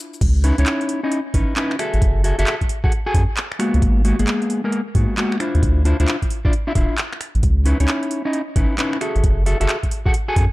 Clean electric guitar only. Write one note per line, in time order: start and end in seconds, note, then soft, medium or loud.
0.00 0.19 D4 medium
0.00 0.19 E4 medium
0.00 0.19 F4 medium
0.00 0.19 C5 medium
0.44 0.56 C#4 medium
0.44 0.56 D#4 medium
0.44 0.56 E4 medium
0.44 0.56 B4 medium
0.58 1.00 C#4 medium
0.58 1.00 D#4 medium
0.58 1.00 E4 medium
0.58 1.00 C#5 medium
1.03 1.19 C#4 medium
1.03 1.19 D#4 medium
1.03 1.19 E4 medium
1.03 1.19 D#5 medium
1.34 1.55 C#4 medium
1.34 1.55 D#4 medium
1.34 1.55 E4 medium
1.34 1.55 B4 medium
1.56 1.75 C#4 medium
1.56 1.75 D#4 medium
1.56 1.75 E4 medium
1.56 1.75 B4 loud
1.79 2.22 F#4 medium
1.79 2.22 G#4 medium
1.79 2.22 A4 medium
1.79 2.22 E5 medium
2.24 2.37 F#4 medium
2.24 2.37 G#4 medium
2.24 2.37 A4 medium
2.24 2.37 E5 medium
2.38 2.54 F#4 medium
2.38 2.54 G#4 medium
2.38 2.54 A4 medium
2.38 2.54 E5 loud
2.84 2.92 F#4 medium
2.84 2.92 G#4 medium
2.84 2.92 A4 medium
2.84 2.92 F#5 loud
3.06 3.22 F#4 loud
3.06 3.22 G#4 medium
3.06 3.22 A4 medium
3.06 3.22 G#5 loud
3.59 4.03 G#3 medium
3.59 4.03 A#3 medium
3.59 4.03 B3 medium
3.59 4.03 F#4 loud
4.04 4.17 G#3 medium
4.04 4.17 A#3 medium
4.04 4.17 B3 medium
4.04 4.17 F#4 medium
4.19 4.61 G#3 medium
4.19 4.61 A#3 medium
4.19 4.61 B3 medium
4.19 4.61 G#4 medium
4.64 4.80 G#3 medium
4.64 4.80 A#3 medium
4.64 4.80 B3 medium
4.64 4.80 A#4 medium
4.95 5.16 G#3 medium
4.95 5.16 A#3 medium
4.95 5.16 B3 medium
4.95 5.16 F#4 medium
5.17 5.36 G#3 loud
5.17 5.36 A#3 medium
5.17 5.36 B3 medium
5.17 5.36 F#4 loud
5.40 5.83 D4 medium
5.40 5.83 E4 medium
5.40 5.83 F4 medium
5.40 5.83 C5 medium
5.85 5.98 D4 medium
5.85 5.98 E4 medium
5.85 5.98 F4 medium
5.85 5.98 C5 medium
6.00 6.15 D4 loud
6.00 6.15 E4 medium
6.00 6.15 F4 medium
6.00 6.15 C5 loud
6.45 6.52 D4 medium
6.45 6.52 E4 medium
6.45 6.52 F4 medium
6.45 6.52 D5 loud
6.67 6.74 D4 loud
6.67 6.74 E4 medium
6.67 6.74 F4 medium
6.67 6.74 E5 loud
7.65 7.78 C#4 medium
7.65 7.78 D#4 medium
7.65 7.78 E4 medium
7.65 7.78 B4 medium
7.80 8.22 C#4 medium
7.80 8.22 D#4 medium
7.80 8.22 E4 medium
7.80 8.22 C#5 medium
8.25 8.41 C#4 medium
8.25 8.41 D#4 medium
8.25 8.41 E4 medium
8.25 8.41 D#5 medium
8.56 8.77 C#4 medium
8.56 8.77 D#4 medium
8.56 8.77 E4 medium
8.56 8.77 B4 medium
8.78 8.97 C#4 loud
8.78 8.97 D#4 medium
8.78 8.97 E4 medium
8.78 8.97 B4 loud
9.01 9.44 F#4 medium
9.01 9.44 G#4 medium
9.01 9.44 A4 medium
9.01 9.44 E5 medium
9.46 9.59 F#4 medium
9.46 9.59 G#4 medium
9.46 9.58 A4 medium
9.46 9.58 E5 medium
9.60 9.76 F#4 loud
9.60 9.76 G#4 medium
9.60 9.76 A4 medium
9.60 9.76 E5 loud
10.05 10.13 F#4 medium
10.05 10.13 G#4 medium
10.05 10.13 A4 medium
10.05 10.13 F#5 loud
10.28 10.44 F#4 loud
10.28 10.44 G#4 medium
10.28 10.44 A4 medium
10.28 10.44 G#5 loud